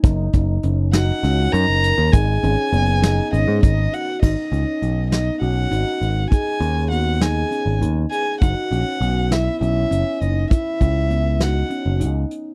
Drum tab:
CC |-------|-------|x------|-------|
HH |xxxxxxx|xxxxxxx|-xxxxxx|xxxxxxx|
SD |-o-oo--|---o---|---o---|---o---|
BD |oo-----|o----o-|o------|o------|

CC |-------|-------|
HH |xxxxxxx|xxxxxxx|
SD |---o---|---o---|
BD |o------|oo-----|